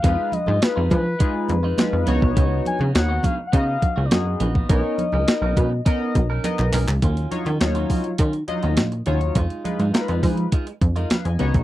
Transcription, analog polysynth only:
0.04 G#3 D#4 F4 B4
0.62 G#3 D#4 F4 B4
1.20 G#3 D#4 F4 G#4
1.78 G#3 D#4 F4 B4
2.07 B3 D#4 F#4 C#5
2.94 B3 D#4 F#4 C#5
3.52 B3 D#4 F#4 D#5
4.11 B3 D#4 F#4 G#4
4.69 B3 D#4 A#4 C#5
5.27 B3 D#4 A#4 D#5
5.86 B3 D#4 A#4 D#5
6.44 B3 D#4 A#4 D#5
7.31 F#3 D#4 F4 C#5
7.60 F#3 D#4 F4 C#5
8.48 F#3 D#4 F4 D#5
9.06 F#3 D#4 F4 C#5
9.64 G#3 D#4 F4 B4
9.93 G#3 D#4 F4 A#4
10.01 B4
10.96 A#4 D#5
11.11 B4 F5
11.25 D#5 G#5
11.39 B3 D#4 F#4 C#5

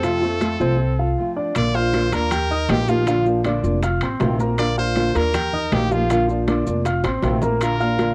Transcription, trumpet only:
Already playing: A4
1.57 D5
1.75 C5
2.13 A#4
2.71 G4
2.89 F4
4.59 D5
4.79 C5
5.17 A#4
5.73 G4
5.92 F4
7.63 A#4

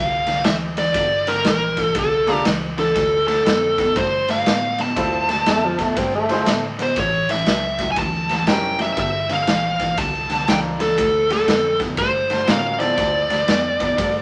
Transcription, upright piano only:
2.27 A#3 D4 F4 A4
4.96 C4 E4 F4 A4
6.29 C4 E4 F4 C5
8.48 C#4 E4 G4 A#4
10.48 A#3 D4 F4 A4
12.47 C#4 F4 F#4 A#4
12.79 C4 E4 F4 A4

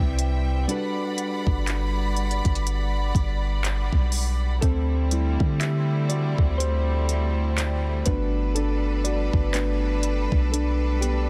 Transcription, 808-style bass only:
0.00 C2
1.47 G1
2.45 G1
3.15 G1
3.93 B1
4.63 D2
5.40 D3
6.39 D2
8.07 G1
9.34 G1
10.32 B1

